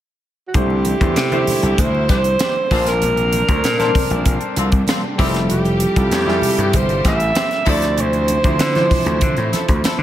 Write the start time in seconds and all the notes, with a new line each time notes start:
0.48 F#4
0.54 C2 D3 G3 A3 D4 E4 G4 C5, kick, closed hi-hat, low conga
0.70 muted conga
0.85 closed hi-hat, high conga
1.01 E2 A3 D4 E4 C5, kick, closed hi-hat
1.16 C3, snare, closed hi-hat
1.32 A3 D4 E4 C5, closed hi-hat, muted conga, high conga
1.47 open hi-hat, high conga, low conga
1.63 C2, closed hi-hat
1.78 D2 C5, kick, closed hi-hat, low conga
1.95 muted conga
2.08 C2 E3 D4 G4 C5, kick, snare, closed hi-hat, high conga
2.24 closed hi-hat
2.39 E3 D4 G4, snare, closed hi-hat, high conga
2.56 muted conga
2.71 A#1 C3 D3 A#3 C4 D4 F4 C5 A5, kick, open hi-hat
2.87 A#4, snare, closed hi-hat
3.02 A#1, closed hi-hat, low conga
3.17 closed hi-hat
3.33 closed hi-hat, high conga
3.48 D2 A#3 D4 A4 C5, kick, closed hi-hat
3.64 A#2, snare, closed hi-hat, muted conga
3.79 A#3 C4 C5 A5, snare, closed hi-hat, muted conga, high conga
3.86 D4
3.95 kick, open hi-hat, high conga, low conga
4.10 A#1, closed hi-hat
4.26 kick, closed hi-hat, low conga
4.41 closed hi-hat
4.56 C2 D3 C4 F4, closed hi-hat, high conga
4.72 kick, closed hi-hat
4.87 D3 C4 F4, snare, closed hi-hat, muted conga, high conga
5.04 muted conga
5.18 F1 C3 E3 F3 G3 C4 E4 G4, kick, open hi-hat
5.26 A4
5.34 snare, closed hi-hat
5.49 G4, closed hi-hat, low conga
5.65 closed hi-hat, muted conga
5.80 closed hi-hat, high conga
5.96 C2 G3 E4 F4 A4, kick, closed hi-hat
6.11 F2, snare, closed hi-hat
6.26 G3 E4 F4 G#4, snare, high conga
6.34 A4
6.42 open hi-hat, high conga, low conga
6.58 G2, closed hi-hat
6.73 G1 C5, kick, closed hi-hat, low conga
6.89 closed hi-hat
7.03 A1 E3 C4 G4, kick, snare, closed hi-hat, high conga
7.08 E5
7.20 closed hi-hat
7.34 E3 C4 G4, snare, closed hi-hat, muted conga, high conga
7.51 snare, closed hi-hat
7.65 D2 C3 F3 D4 E4 A4 C5, kick, open hi-hat
7.70 D5
7.82 snare, closed hi-hat
7.98 D2 C5, closed hi-hat, muted conga, low conga
8.13 closed hi-hat, muted conga
8.28 closed hi-hat, high conga
8.44 D2 F3 D4 E4 C5, kick, closed hi-hat
8.59 D3, snare, closed hi-hat
8.75 E3 D4 E4 C5, snare, closed hi-hat, muted conga, high conga
8.82 F3
8.91 kick, open hi-hat, high conga, low conga
9.06 D2, closed hi-hat
9.21 D3, kick, closed hi-hat, muted conga, high conga, low conga
9.37 A2, closed hi-hat, muted conga
9.52 F3 E4 A4, snare, closed hi-hat, high conga
9.68 D2, kick, closed hi-hat
9.84 F3 E4 A4, snare, closed hi-hat, muted conga, high conga
9.98 D3